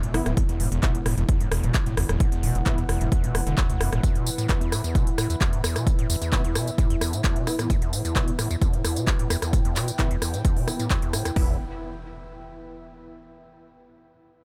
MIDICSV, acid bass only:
0, 0, Header, 1, 2, 480
1, 0, Start_track
1, 0, Key_signature, 1, "minor"
1, 0, Tempo, 458015
1, 388, Time_signature, 4, 2, 24, 8
1, 15133, End_track
2, 0, Start_track
2, 0, Title_t, "Acid bass"
2, 0, Program_c, 0, 38
2, 33, Note_on_c, 0, 47, 97
2, 148, Note_on_c, 0, 45, 108
2, 164, Note_off_c, 0, 47, 0
2, 189, Note_off_c, 0, 45, 0
2, 273, Note_on_c, 0, 45, 76
2, 368, Note_off_c, 0, 45, 0
2, 387, Note_on_c, 0, 40, 104
2, 456, Note_off_c, 0, 40, 0
2, 514, Note_on_c, 0, 40, 75
2, 627, Note_on_c, 0, 45, 78
2, 643, Note_off_c, 0, 40, 0
2, 730, Note_off_c, 0, 45, 0
2, 751, Note_on_c, 0, 40, 73
2, 866, Note_on_c, 0, 47, 101
2, 881, Note_off_c, 0, 40, 0
2, 990, Note_on_c, 0, 45, 111
2, 1006, Note_off_c, 0, 47, 0
2, 1029, Note_off_c, 0, 45, 0
2, 1107, Note_on_c, 0, 45, 78
2, 1210, Note_off_c, 0, 45, 0
2, 1231, Note_on_c, 0, 40, 102
2, 1295, Note_off_c, 0, 40, 0
2, 1347, Note_on_c, 0, 40, 86
2, 1471, Note_on_c, 0, 45, 82
2, 1487, Note_off_c, 0, 40, 0
2, 1567, Note_off_c, 0, 45, 0
2, 1587, Note_on_c, 0, 40, 78
2, 1712, Note_on_c, 0, 47, 97
2, 1728, Note_off_c, 0, 40, 0
2, 1827, Note_on_c, 0, 45, 94
2, 1843, Note_off_c, 0, 47, 0
2, 1869, Note_off_c, 0, 45, 0
2, 1953, Note_on_c, 0, 45, 79
2, 2048, Note_off_c, 0, 45, 0
2, 2067, Note_on_c, 0, 40, 103
2, 2136, Note_off_c, 0, 40, 0
2, 2191, Note_on_c, 0, 40, 77
2, 2307, Note_on_c, 0, 45, 83
2, 2323, Note_off_c, 0, 40, 0
2, 2410, Note_off_c, 0, 45, 0
2, 2432, Note_on_c, 0, 40, 83
2, 2549, Note_on_c, 0, 47, 101
2, 2564, Note_off_c, 0, 40, 0
2, 2672, Note_on_c, 0, 45, 98
2, 2688, Note_off_c, 0, 47, 0
2, 2710, Note_off_c, 0, 45, 0
2, 2789, Note_on_c, 0, 45, 80
2, 2892, Note_off_c, 0, 45, 0
2, 2915, Note_on_c, 0, 40, 113
2, 2977, Note_off_c, 0, 40, 0
2, 3028, Note_on_c, 0, 40, 81
2, 3153, Note_on_c, 0, 45, 79
2, 3169, Note_off_c, 0, 40, 0
2, 3248, Note_off_c, 0, 45, 0
2, 3267, Note_on_c, 0, 40, 84
2, 3393, Note_on_c, 0, 47, 108
2, 3408, Note_off_c, 0, 40, 0
2, 3508, Note_on_c, 0, 38, 74
2, 3524, Note_off_c, 0, 47, 0
2, 3577, Note_off_c, 0, 38, 0
2, 3633, Note_on_c, 0, 50, 75
2, 3728, Note_off_c, 0, 50, 0
2, 3748, Note_on_c, 0, 38, 98
2, 3851, Note_off_c, 0, 38, 0
2, 3872, Note_on_c, 0, 38, 96
2, 3986, Note_on_c, 0, 42, 103
2, 4002, Note_off_c, 0, 38, 0
2, 4090, Note_off_c, 0, 42, 0
2, 4112, Note_on_c, 0, 45, 80
2, 4207, Note_off_c, 0, 45, 0
2, 4227, Note_on_c, 0, 40, 80
2, 4352, Note_on_c, 0, 47, 99
2, 4368, Note_off_c, 0, 40, 0
2, 4467, Note_on_c, 0, 45, 100
2, 4483, Note_off_c, 0, 47, 0
2, 4509, Note_off_c, 0, 45, 0
2, 4592, Note_on_c, 0, 45, 78
2, 4687, Note_off_c, 0, 45, 0
2, 4707, Note_on_c, 0, 40, 102
2, 4776, Note_off_c, 0, 40, 0
2, 4832, Note_on_c, 0, 40, 85
2, 4947, Note_on_c, 0, 45, 77
2, 4963, Note_off_c, 0, 40, 0
2, 5050, Note_off_c, 0, 45, 0
2, 5072, Note_on_c, 0, 40, 82
2, 5187, Note_on_c, 0, 47, 107
2, 5203, Note_off_c, 0, 40, 0
2, 5312, Note_on_c, 0, 45, 108
2, 5328, Note_off_c, 0, 47, 0
2, 5351, Note_off_c, 0, 45, 0
2, 5427, Note_on_c, 0, 45, 75
2, 5530, Note_off_c, 0, 45, 0
2, 5552, Note_on_c, 0, 40, 100
2, 5616, Note_off_c, 0, 40, 0
2, 5668, Note_on_c, 0, 40, 79
2, 5793, Note_on_c, 0, 45, 75
2, 5809, Note_off_c, 0, 40, 0
2, 5888, Note_off_c, 0, 45, 0
2, 5908, Note_on_c, 0, 40, 81
2, 6032, Note_on_c, 0, 47, 98
2, 6048, Note_off_c, 0, 40, 0
2, 6149, Note_on_c, 0, 45, 98
2, 6164, Note_off_c, 0, 47, 0
2, 6189, Note_off_c, 0, 45, 0
2, 6275, Note_on_c, 0, 45, 77
2, 6369, Note_off_c, 0, 45, 0
2, 6389, Note_on_c, 0, 40, 105
2, 6457, Note_off_c, 0, 40, 0
2, 6514, Note_on_c, 0, 40, 75
2, 6629, Note_on_c, 0, 45, 83
2, 6644, Note_off_c, 0, 40, 0
2, 6731, Note_off_c, 0, 45, 0
2, 6756, Note_on_c, 0, 40, 87
2, 6870, Note_on_c, 0, 47, 99
2, 6886, Note_off_c, 0, 40, 0
2, 6994, Note_on_c, 0, 45, 100
2, 7009, Note_off_c, 0, 47, 0
2, 7031, Note_off_c, 0, 45, 0
2, 7109, Note_on_c, 0, 45, 87
2, 7211, Note_off_c, 0, 45, 0
2, 7233, Note_on_c, 0, 40, 110
2, 7296, Note_off_c, 0, 40, 0
2, 7348, Note_on_c, 0, 40, 77
2, 7475, Note_on_c, 0, 45, 76
2, 7490, Note_off_c, 0, 40, 0
2, 7569, Note_off_c, 0, 45, 0
2, 7590, Note_on_c, 0, 40, 86
2, 7714, Note_on_c, 0, 47, 101
2, 7730, Note_off_c, 0, 40, 0
2, 7828, Note_on_c, 0, 45, 102
2, 7844, Note_off_c, 0, 47, 0
2, 7869, Note_off_c, 0, 45, 0
2, 7953, Note_on_c, 0, 45, 80
2, 8048, Note_off_c, 0, 45, 0
2, 8068, Note_on_c, 0, 40, 104
2, 8137, Note_off_c, 0, 40, 0
2, 8196, Note_on_c, 0, 40, 80
2, 8311, Note_on_c, 0, 45, 78
2, 8326, Note_off_c, 0, 40, 0
2, 8412, Note_off_c, 0, 45, 0
2, 8435, Note_on_c, 0, 40, 75
2, 8550, Note_on_c, 0, 47, 103
2, 8566, Note_off_c, 0, 40, 0
2, 8674, Note_on_c, 0, 45, 108
2, 8690, Note_off_c, 0, 47, 0
2, 8712, Note_off_c, 0, 45, 0
2, 8790, Note_on_c, 0, 45, 81
2, 8892, Note_off_c, 0, 45, 0
2, 8914, Note_on_c, 0, 40, 101
2, 8977, Note_off_c, 0, 40, 0
2, 9030, Note_on_c, 0, 40, 85
2, 9154, Note_on_c, 0, 45, 81
2, 9170, Note_off_c, 0, 40, 0
2, 9249, Note_off_c, 0, 45, 0
2, 9271, Note_on_c, 0, 40, 76
2, 9395, Note_on_c, 0, 47, 104
2, 9411, Note_off_c, 0, 40, 0
2, 9510, Note_on_c, 0, 45, 104
2, 9526, Note_off_c, 0, 47, 0
2, 9550, Note_off_c, 0, 45, 0
2, 9635, Note_on_c, 0, 45, 75
2, 9729, Note_off_c, 0, 45, 0
2, 9750, Note_on_c, 0, 40, 109
2, 9817, Note_off_c, 0, 40, 0
2, 9875, Note_on_c, 0, 40, 79
2, 9990, Note_on_c, 0, 45, 81
2, 10005, Note_off_c, 0, 40, 0
2, 10092, Note_off_c, 0, 45, 0
2, 10114, Note_on_c, 0, 40, 78
2, 10228, Note_on_c, 0, 47, 102
2, 10244, Note_off_c, 0, 40, 0
2, 10353, Note_on_c, 0, 45, 102
2, 10368, Note_off_c, 0, 47, 0
2, 10391, Note_off_c, 0, 45, 0
2, 10468, Note_on_c, 0, 45, 82
2, 10571, Note_off_c, 0, 45, 0
2, 10593, Note_on_c, 0, 40, 109
2, 10656, Note_off_c, 0, 40, 0
2, 10710, Note_on_c, 0, 40, 76
2, 10834, Note_on_c, 0, 45, 77
2, 10850, Note_off_c, 0, 40, 0
2, 10928, Note_off_c, 0, 45, 0
2, 10950, Note_on_c, 0, 40, 87
2, 11074, Note_on_c, 0, 47, 101
2, 11089, Note_off_c, 0, 40, 0
2, 11190, Note_on_c, 0, 45, 106
2, 11206, Note_off_c, 0, 47, 0
2, 11230, Note_off_c, 0, 45, 0
2, 11315, Note_on_c, 0, 45, 79
2, 11409, Note_off_c, 0, 45, 0
2, 11430, Note_on_c, 0, 40, 96
2, 11498, Note_off_c, 0, 40, 0
2, 11555, Note_on_c, 0, 40, 71
2, 11670, Note_on_c, 0, 45, 84
2, 11686, Note_off_c, 0, 40, 0
2, 11772, Note_off_c, 0, 45, 0
2, 11795, Note_on_c, 0, 40, 78
2, 11857, Note_off_c, 0, 40, 0
2, 11909, Note_on_c, 0, 40, 87
2, 12132, Note_off_c, 0, 40, 0
2, 15133, End_track
0, 0, End_of_file